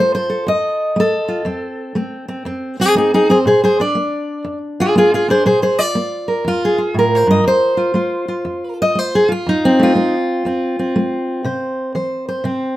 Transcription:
Already playing: A3 F4 A4
0.00 C5
0.15 C5
0.30 A4
0.47 F2 D#5
0.96 A3 A4
1.28 F4
1.45 F2 C4
1.95 A3 C4
2.28 C4
2.45 F2 C4
2.80 C4 D#4 G#4
2.95 A3 D#4 G#4
3.14 D#4 G#4
3.29 C4 G#4 C5
3.46 A#2 G#4 C5
3.64 G#4 C5
3.80 D4 D5
3.95 A#3
4.44 F2
4.80 F4 G#4
4.95 A#3 F4 G#4
5.14 F4 G#4
5.28 D4 G#4 C5
5.45 A#2 G#4 C5
5.62 G#4 C5
5.79 F4 D5
5.95 A#3
6.28 A#4
6.45 F2 F4
6.65 G#4
6.78 F4
6.94 A2
6.99 A#4
7.15 C5
7.27 G2 D#5
7.44 F2 C5
7.77 F4
7.94 A3 F4
8.28 F4
8.45 F2
8.82 D#5
8.95 A3 C5
9.15 G#4
9.29 F4
9.46 F2 D#4
9.65 C4
9.79 A3 F4
9.95 A3 C4
10.45 F2 C4
10.79 C4
10.96 A3
11.44 C3 C5
11.95 E3 C5
12.29 C5
12.44 C3 C4

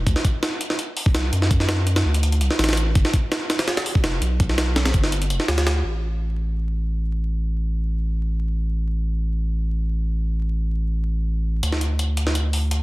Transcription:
0.07 D2, kick, closed hi-hat
0.16 snare
0.25 kick, closed hi-hat
0.43 snare, closed hi-hat
0.61 closed hi-hat
0.70 snare
0.79 closed hi-hat
0.97 open hi-hat
1.06 kick
1.14 C2, snare, closed hi-hat
1.33 F#2, closed hi-hat
1.42 snare
1.51 kick, closed hi-hat
1.60 snare
1.69 snare, closed hi-hat
1.87 closed hi-hat
1.96 snare, closed hi-hat
2.05 D2
2.14 closed hi-hat
2.23 closed hi-hat
2.32 closed hi-hat
2.41 C2, closed hi-hat
2.51 snare
2.59 A1, snare, closed hi-hat
2.64 snare, closed hi-hat
2.69 snare, closed hi-hat
2.73 snare, closed hi-hat
2.77 closed hi-hat
2.95 G1, kick, closed hi-hat
3.05 snare
3.14 kick, closed hi-hat
3.32 snare, closed hi-hat
3.50 snare, closed hi-hat
3.59 snare, closed hi-hat
3.68 snare, closed hi-hat
3.77 snare, closed hi-hat
3.86 open hi-hat
3.95 kick
4.03 F1, snare, closed hi-hat
4.21 B1, closed hi-hat
4.40 kick, closed hi-hat
4.49 snare
4.58 snare, closed hi-hat
4.76 snare, closed hi-hat
4.86 snare, closed hi-hat
4.94 G1, kick, closed hi-hat
5.04 snare
5.12 closed hi-hat
5.22 closed hi-hat
5.30 F1, closed hi-hat
5.40 snare
5.48 D2, snare, closed hi-hat
5.58 snare, closed hi-hat
5.67 snare, closed hi-hat
5.84 A1
11.63 D2, closed hi-hat
11.72 snare
11.81 closed hi-hat
11.99 closed hi-hat
12.17 closed hi-hat
12.27 snare
12.35 closed hi-hat
12.53 open hi-hat
12.71 closed hi-hat

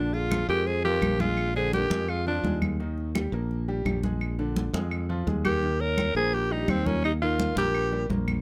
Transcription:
Already playing: A#1 D3 D4 F4
0.13 F4 G#4, high conga
0.31 F3 F4, high conga, claves
0.48 F2 G#3 G4 G#4 A#4, high conga
0.67 G#4 C5, high conga
0.84 F3 F4 G4 A#4, high conga
1.02 A#1, high conga, claves
1.20 G#3 F4 G#4, high conga
1.37 high conga, claves
1.56 D3 D4 G#4 C5, high conga
1.73 G4 A#4, high conga
1.90 F2 G#3 G#4, high conga
2.09 F4 G#4, high conga, claves
2.27 F3 D4 F4, high conga
2.44 D#2 G#3 G#4, high conga
2.62 high conga, claves
2.80 D#3 D#4, high conga
2.98 high conga
3.15 G3 G4, high conga, claves
3.32 A#1 A#3 A#4, high conga
3.51 high conga
3.68 G3 G4, high conga
3.85 A#1, high conga, claves
4.03 G#3 G#4, high conga
4.21 high conga, claves
4.39 D3 D4, high conga
4.56 high conga
4.74 F2 G#3 G#4, high conga
4.91 high conga, claves
5.09 F3 F4, high conga
5.27 D#2 G#3 G#4, high conga
5.45 G4 A#4, high conga, claves
5.63 D#3 D#4, high conga
5.80 A#4 C#5, high conga
5.98 G3 G4, high conga, claves
6.15 A#1 A#3 G#4 A#4 C5, high conga
6.33 G4 A#4, high conga
6.51 G3 D#4 G4, high conga
6.68 D#2 C4 D#4, high conga, claves
6.86 A#3 C#4 F4 A#4, high conga
7.04 D#4 G4, high conga, claves
7.22 D#3 D#4 F4 A#4, high conga
7.39 high conga
7.56 A#1 A#3 G4 A#4, high conga
7.75 high conga, claves
7.92 G3 G4, high conga
8.10 A#1 A#3 A#4, high conga
8.28 high conga, claves

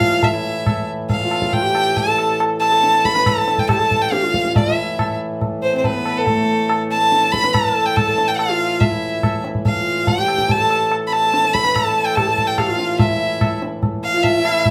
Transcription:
Already playing: A2 E3 F4 F5
0.01 tabla ge
0.22 A2 E3 E5, tabla tin, tabla ge
0.33 E4
0.66 tabla na, tabla ge
1.10 F5, tabla tin, tabla ge
1.19 F4
1.31 tabla na
1.42 tabla ke
1.53 G5, tabla tin, tabla ge
1.63 G4
1.75 tabla na
1.97 A5, tabla tin, tabla ge
2.06 A4
2.18 tabla na
2.40 tabla na
2.60 A5, tabla na
2.72 A4
2.83 tabla te
2.95 tabla te
3.05 B5, tabla ke
3.15 B4, tabla te
3.26 A5, tabla na, tabla ge
3.37 A4
3.47 tabla te
3.58 G5, tabla ge
3.69 G4 A5, tabla na, tabla ge
3.80 A4
3.91 tabla ge
4.02 G5
4.12 G4 F5, tabla te
4.23 F4, tabla te
4.34 tabla ke
4.45 tabla te
4.56 D5, tabla tin, tabla ge
4.66 E4
4.74 E5
4.99 tabla na, tabla ge
5.41 tabla tin, tabla ge
5.63 C5
5.73 C4
5.78 C5
5.84 B4, tabla tin, tabla ge
5.95 B3
6.06 tabla na
6.17 A4
6.27 A3, tabla tin, tabla ge
6.70 tabla na
6.91 A5
7.01 A4
7.12 tabla te
7.23 tabla te
7.32 B5, tabla ke
7.44 B4, tabla te
7.53 A5, tabla na, tabla ge
7.65 A4
7.86 G5
7.96 A5, tabla na, tabla ge
8.08 A4
8.18 tabla te
8.28 G5
8.37 F5, tabla na
8.50 F4
8.80 A2 E3 E5, tabla tin, tabla ge
8.90 E4
9.23 tabla na, tabla ge
9.45 tabla te
9.55 tabla ge
9.65 F5, tabla tin, tabla ge
9.76 F4
10.07 G5, tabla tin, tabla ge
10.18 G4
10.28 tabla na
10.38 tabla ke
10.49 A5, tabla tin, tabla ge
10.60 A4
10.70 tabla na
10.92 tabla na
11.07 B5
11.13 A5, tabla na
11.24 A4
11.34 tabla te
11.45 tabla te
11.53 B5, tabla ke
11.65 B4, tabla te
11.75 A5, tabla na, tabla ge
11.80 B4
11.84 A4
12.06 G5
12.16 G4 A5, tabla na, tabla ge
12.27 A4
12.38 tabla ge
12.47 G5
12.58 G4 F5, tabla na, tabla ge
12.69 F4
12.79 tabla te
12.99 E5, tabla tin, tabla ge
13.10 E4
13.41 tabla na, tabla ge
13.62 tabla te
13.83 tabla tin, tabla ge
14.03 F5
14.13 F4
14.24 E5, tabla tin, tabla ge
14.34 E4
14.45 tabla na
14.66 tabla tin, tabla ge

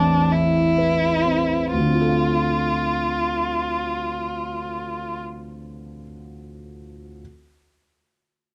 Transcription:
Already playing: A1 E2 C4 D4
0.32 E4
0.78 B4
1.25 C4
1.73 D2 F4
1.80 D3
1.87 C4
1.94 F4
2.01 A4
2.08 F5

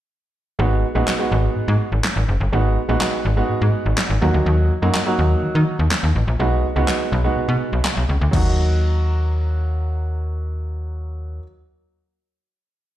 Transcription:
0.59 G#1 G#3 B3 D#4 F#4
0.95 A#1 G#3 B3 D#4 F#4
1.07 snare, clap
1.19 G#3 B3 D#4 F#4
1.32 G#1
1.56 G#2
1.68 G#2
1.92 G#1
2.04 snare, clap
2.16 G#1
2.28 F#1
2.40 G1
2.52 G#1 G#3 B3 D#4 F#4
2.89 A#1 G#3 B3 D#4 F#4
3.01 snare, clap
3.25 G#1
3.37 G#3 B3 D#4 F#4
3.49 G#2
3.61 G#2
3.86 G#1
3.98 snare, clap
4.10 G#1
4.22 D#2 F#3 A#3 D#4 F#4
4.34 D2
4.46 D#2
4.82 F#2 F#3 A#3 D#4 F#4
4.94 snare, clap
5.06 F#3 A#3 D#4 F#4
5.19 D#2
5.43 D#3
5.55 D#3
5.79 D#2
5.91 snare, clap
6.03 D#2
6.16 A1
6.28 A#1
6.39 B1 G#3 B3 D#4 F#4
6.76 C#2 G#3 B3 D#4 F#4
6.88 snare, clap
7.12 B1
7.24 G#3 B3 D#4 F#4
7.37 B2
7.48 B2
7.73 B1
7.85 snare, clap
7.97 B1
8.09 C#2
8.21 D2
8.31 D#2 F#3 A#3 D#4 F#4, kick, crash

